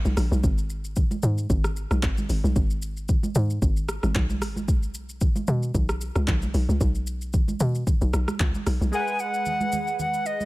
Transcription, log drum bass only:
0.05 0.16 B1 medium
0.17 0.30 A#1 medium
0.31 0.42 B1 loud
0.44 1.19 G#1 loud
1.23 1.47 G#2 medium
1.50 1.86 G#1 loud
1.91 2.01 B1 medium
2.03 2.26 G#1 loud
2.29 2.42 G#1 medium
2.44 2.55 B1 loud
2.56 3.32 G#1 loud
3.36 3.59 G#2 loud
3.62 3.99 G#1 loud
4.03 4.14 G#1 medium
4.15 4.43 B1 loud
4.42 4.70 G#1 loud
4.68 5.44 B1 loud
5.48 5.71 B2 loud
5.75 6.11 B1 loud
6.16 6.26 C#2 loud
6.28 6.51 B1 loud
6.54 6.67 B1 loud
6.69 6.79 C#2 medium
6.81 7.56 B1 loud
7.60 7.84 B2 loud
8.01 8.12 B1 loud
8.13 8.26 B1 medium
8.40 8.53 C#2 loud
8.67 8.79 B1 medium
8.81 8.92 B1 medium

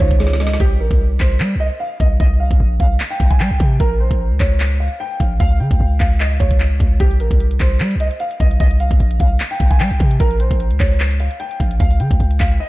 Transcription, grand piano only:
0.00 0.57 C#5 medium
0.60 0.75 G4 loud
0.80 1.18 A#4 medium
1.20 1.58 C5 medium
1.60 1.75 D#5 medium
1.80 1.95 F5 medium
2.00 2.15 D#5 medium
2.20 2.35 D#5 loud
2.40 2.78 F5 medium
2.80 3.09 F5 medium
3.10 3.26 G5 medium
3.31 3.38 G#5 medium
3.40 3.78 G5 medium
3.80 3.95 A#4 loud
4.00 4.38 C5 medium
4.40 4.78 C#5 medium
4.80 4.95 F5 medium
5.00 5.15 G5 medium
5.20 5.35 F5 medium
5.40 5.55 F5 loud
5.60 5.98 G5 medium
6.00 6.15 F5 medium
6.20 6.35 D#5 medium
6.40 6.96 C#5 medium
7.00 7.15 G4 loud
7.20 7.58 A#4 medium
7.60 7.98 C5 medium
8.00 8.15 D#5 medium
8.20 8.35 F5 medium
8.40 8.55 D#5 medium
8.60 8.75 D#5 loud
8.80 9.18 F5 medium
9.20 9.49 F5 medium
9.51 9.66 G5 medium
9.71 9.78 G#5 medium
9.80 10.18 G5 medium
10.20 10.35 A#4 loud
10.40 10.78 C5 medium
10.80 11.18 C#5 medium
11.20 11.35 F5 medium
11.40 11.55 G5 medium
11.60 11.75 F5 medium
11.80 11.95 F5 loud
12.00 12.38 G5 medium
12.40 12.55 F5 medium
12.60 12.69 D#5 medium

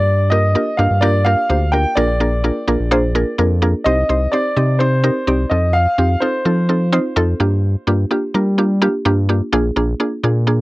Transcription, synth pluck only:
0.00 0.22 A#3 medium
0.00 0.22 D4 medium
0.00 0.22 F4 medium
0.00 0.22 G4 medium
0.00 0.22 A#4 medium
0.31 0.44 A#3 medium
0.31 0.44 D4 medium
0.31 0.44 F4 medium
0.31 0.44 G4 medium
0.31 0.44 A#4 medium
0.55 0.68 A#3 medium
0.55 0.68 D4 medium
0.55 0.68 F4 medium
0.55 0.68 G4 medium
0.55 0.68 A#4 medium
0.79 0.91 A#3 medium
0.79 0.92 D4 medium
0.79 0.92 F4 medium
0.79 0.92 G4 medium
0.79 0.92 A#4 medium
1.02 1.15 A#3 loud
1.02 1.15 D4 medium
1.02 1.15 F4 medium
1.02 1.15 G4 medium
1.02 1.15 A#4 loud
1.26 1.39 A#3 medium
1.26 1.39 D4 medium
1.26 1.39 F4 medium
1.26 1.39 G4 medium
1.26 1.39 A#4 medium
1.49 1.62 A#3 medium
1.49 1.62 D4 medium
1.49 1.62 F4 medium
1.49 1.62 G4 medium
1.49 1.63 C5 medium
1.73 1.86 A#3 medium
1.73 1.86 D4 medium
1.73 1.86 F4 medium
1.73 1.86 G4 medium
1.73 1.86 A#4 medium
1.97 2.10 A#3 loud
1.97 2.10 D4 medium
1.97 2.10 F4 medium
1.97 2.10 G#4 medium
1.97 2.10 A#4 loud
2.20 2.33 A#3 medium
2.20 2.33 D4 medium
2.20 2.33 F4 medium
2.20 2.33 G#4 medium
2.20 2.33 A#4 medium
2.44 2.57 A#3 medium
2.44 2.57 D4 medium
2.44 2.57 F4 medium
2.44 2.57 G#4 medium
2.44 2.57 A#4 medium
2.67 2.80 A#3 medium
2.67 2.80 D4 medium
2.67 2.81 F4 medium
2.67 2.81 G#4 medium
2.67 2.81 A#4 loud
2.91 3.04 A#3 loud
2.91 3.04 D4 loud
2.91 3.04 F4 loud
2.91 3.04 G#4 loud
2.91 3.04 C5 loud
3.15 3.28 A#3 medium
3.15 3.28 D4 medium
3.15 3.28 F4 medium
3.15 3.28 G#4 medium
3.15 3.28 A#4 loud
3.38 3.51 A#3 medium
3.38 3.51 D4 medium
3.38 3.51 F4 medium
3.38 3.51 G#4 medium
3.38 3.51 A#4 loud
3.62 3.75 A#3 medium
3.62 3.75 D4 medium
3.62 3.75 F4 medium
3.62 3.75 G#4 medium
3.62 3.75 A#4 loud
3.86 3.99 C4 medium
3.86 3.99 D#4 medium
3.86 3.99 G4 medium
3.86 3.99 C5 loud
4.09 4.22 C4 medium
4.09 4.22 D#4 medium
4.09 4.22 G4 medium
4.09 4.22 C5 medium
4.33 4.46 C4 medium
4.33 4.46 D#4 medium
4.33 4.46 G4 medium
4.33 4.46 C5 medium
4.56 4.69 C4 medium
4.56 4.69 D#4 medium
4.56 4.70 G4 medium
4.56 4.70 D#5 medium
4.80 4.93 C4 medium
4.80 4.93 D#4 medium
4.80 4.93 G4 medium
4.80 4.93 C5 medium
5.04 5.17 C4 loud
5.04 5.17 D#4 medium
5.04 5.17 G4 medium
5.04 5.17 A#4 loud
5.27 5.40 C4 medium
5.27 5.40 D#4 medium
5.27 5.40 G4 medium
5.27 5.40 D5 loud
5.51 5.89 C4 medium
5.51 5.89 D#4 medium
5.51 5.89 F4 medium
5.51 5.89 A4 medium
5.98 6.11 C4 medium
5.98 6.11 D#4 medium
5.98 6.11 F4 medium
5.98 6.11 G4 medium
6.22 6.35 C4 medium
6.22 6.35 D#4 medium
6.22 6.35 F4 medium
6.22 6.35 A4 medium
6.45 6.58 C4 medium
6.45 6.58 D#4 medium
6.45 6.58 F4 medium
6.45 6.59 A4 medium
6.69 6.82 C4 medium
6.69 6.82 D#4 medium
6.69 6.82 F4 medium
6.69 6.82 A4 medium
6.93 7.06 C4 loud
6.93 7.06 D#4 loud
6.93 7.06 F4 loud
6.93 7.06 C5 loud
7.16 7.29 C4 loud
7.16 7.29 D#4 loud
7.16 7.29 F4 loud
7.16 7.29 A4 loud
7.40 7.78 A#3 medium
7.40 7.78 D4 medium
7.40 7.78 F4 medium
7.40 7.78 G4 loud
7.87 8.00 A#3 medium
7.87 8.00 D4 medium
7.87 8.00 F4 medium
7.87 8.00 G4 loud
8.11 8.24 A#3 medium
8.11 8.24 D4 medium
8.11 8.24 F4 medium
8.11 8.24 G4 loud
8.34 8.47 A#3 medium
8.34 8.47 D4 medium
8.34 8.48 F4 medium
8.34 8.48 A#4 loud
8.58 8.71 A#3 medium
8.58 8.71 D4 medium
8.58 8.71 F4 medium
8.58 8.71 G4 loud
8.82 8.95 A#3 loud
8.82 8.95 D4 loud
8.82 8.95 F4 loud
8.82 8.95 G4 loud
9.05 9.18 A#3 loud
9.05 9.18 D4 loud
9.05 9.18 F4 loud
9.05 9.18 G4 loud
9.29 9.42 A#3 medium
9.29 9.42 D4 medium
9.29 9.42 F4 medium
9.29 9.42 G4 loud
9.52 9.65 A#3 loud
9.52 9.65 D4 loud
9.52 9.66 F4 loud
9.52 9.66 G#4 loud
9.76 9.89 A#3 medium
9.76 9.89 D4 medium
9.76 9.89 F4 medium
9.76 9.89 G#4 loud
10.00 10.13 A#3 medium
10.00 10.13 D4 medium
10.00 10.13 F4 medium
10.00 10.13 G#4 loud
10.23 10.36 A#3 medium
10.23 10.36 D4 medium
10.23 10.36 F4 medium
10.23 10.37 G#4 medium
10.47 10.60 A#3 medium
10.47 10.60 D4 medium
10.47 10.60 F4 medium
10.47 10.60 G#4 loud

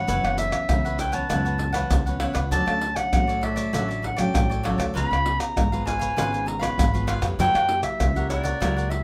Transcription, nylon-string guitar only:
0.00 0.24 E3 medium
0.00 0.24 B3 medium
0.00 0.24 C#4 medium
0.10 0.67 F#2 medium
0.25 0.65 E3 medium
0.25 0.65 B3 medium
0.25 0.65 C#4 medium
0.70 1.28 C#3 medium
0.70 0.98 E3 medium
0.70 0.98 B3 medium
0.70 0.98 C#4 medium
1.13 1.24 E3 medium
1.13 1.25 B3 medium
1.13 1.25 C#4 medium
1.30 1.88 F#2 medium
1.30 1.71 E3 soft
1.30 1.71 B3 medium
1.30 1.72 C#4 medium
1.74 2.01 E3 medium
1.74 2.01 B3 medium
1.74 2.01 C#4 medium
1.91 2.49 C#3 medium
2.08 2.18 E3 medium
2.08 2.18 B3 medium
2.08 2.18 C#4 medium
2.23 2.42 E3 medium
2.23 2.42 B3 medium
2.23 2.42 C#4 medium
2.53 3.11 D3 medium
2.53 2.62 F#3 medium
2.53 2.62 A3 medium
2.53 2.62 C#4 medium
2.68 3.08 F#3 medium
2.68 3.09 A3 medium
2.68 3.09 C#4 medium
3.14 3.71 A2 medium
3.14 3.70 F#3 medium
3.14 3.70 A3 medium
3.14 3.70 C#4 medium
3.74 4.32 D3 medium
3.74 4.15 F#3 medium
3.74 4.15 A3 soft
3.74 4.15 C#4 medium
4.18 4.60 F#3 medium
4.18 4.60 A3 medium
4.18 4.60 C#4 medium
4.36 4.93 A2 medium
4.66 4.91 F#3 medium
4.66 4.92 A3 medium
4.66 4.92 C#4 medium
4.96 5.54 C#3 medium
4.96 5.14 B3 medium
4.96 5.14 F4 medium
4.96 5.14 G#4 medium
5.25 5.67 B3 medium
5.25 5.67 F4 medium
5.25 5.67 G#4 medium
5.57 6.14 G#2 medium
5.72 6.13 B3 medium
5.72 6.13 F4 medium
5.72 6.13 G#4 medium
6.17 6.75 C#3 medium
6.17 6.58 B3 medium
6.17 6.59 F4 medium
6.17 6.59 G#4 medium
6.61 6.88 B3 medium
6.61 6.88 F4 medium
6.61 6.88 G#4 medium
6.79 7.36 G#2 medium
6.94 7.20 B3 medium
6.94 7.19 F4 medium
6.94 7.20 G#4 medium
7.22 7.64 A#3 medium
7.22 7.64 E4 medium
7.22 7.65 G4 medium
7.39 7.97 F#3 medium
7.68 8.10 A#3 medium
7.68 8.10 E4 medium
7.68 8.10 G4 medium
8.00 8.58 C#3 medium
8.15 8.56 A#3 medium
8.15 8.56 E4 medium
8.15 8.56 G4 medium
8.61 9.04 F#3 medium
8.61 9.02 A#3 medium
8.61 9.02 E4 medium
8.61 9.02 G4 medium

